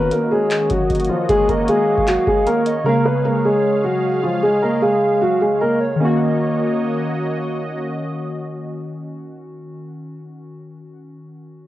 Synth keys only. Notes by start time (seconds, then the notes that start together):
Already playing: D#3 C#4 F#4
2.84 C#3 G#3
2.88 F5
5.95 D#3
6.00 C#4
6.04 F#4